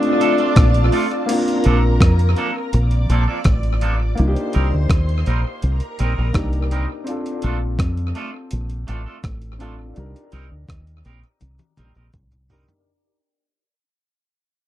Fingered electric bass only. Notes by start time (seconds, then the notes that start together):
0.57 A#1
1.66 A#1
2.01 F2
2.74 A#1
3.09 A#1
3.46 A1
4.19 C2
4.56 C2
4.74 D2
4.90 D#2
5.27 A#1
5.63 C2
6.00 A#1
6.18 A#1
6.35 C2
7.44 A#1
7.80 F2
8.53 A#1
8.89 A1
9.24 A1
9.97 C2
10.33 C2
10.52 D2
10.69 D#2
11.05 A#1
11.42 C2
11.79 A#1
11.96 A#1
12.15 C2